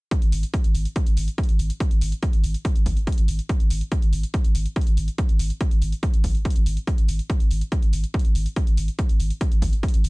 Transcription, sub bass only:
0.22 G#1
0.32 G#1
0.64 G#1
0.75 G#1
1.06 G#1
1.17 G#1
1.49 G#1
1.59 G#1
1.91 G#1
2.01 G#1
2.33 G#1
2.44 G#1
2.75 G#1
2.86 G#1
3.18 G#1
3.28 G#1
3.60 G#1
3.70 G#1
4.02 G#1
4.13 G#1
4.44 G#1
4.55 G#1
4.87 G#1
4.97 G#1
5.29 G#1
5.39 G#1
5.71 G#1
5.82 G#1
6.14 G#1
6.24 G#1
6.56 G#1
6.66 G#1
6.98 G#1
7.08 G#1
7.40 G#1
7.51 G#1
7.82 G#1
7.93 G#1
8.25 G#1
8.35 G#1
8.67 G#1
8.77 G#1
9.09 G#1
9.20 G#1
9.51 G#1
9.62 G#1
9.94 G#1
10.04 G#1

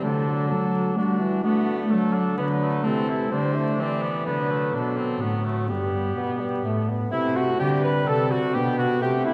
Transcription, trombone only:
0.04 F#3
0.26 F#3
0.98 D3
1.20 E3
1.45 D3
1.91 D3
2.40 F#3
2.87 E3
3.33 G3
3.55 A3
4.28 F#3
5.69 G3
6.16 B3
6.39 G3
6.65 A3
6.89 B3
7.13 A3
7.59 G3
8.55 B3
9.02 A3

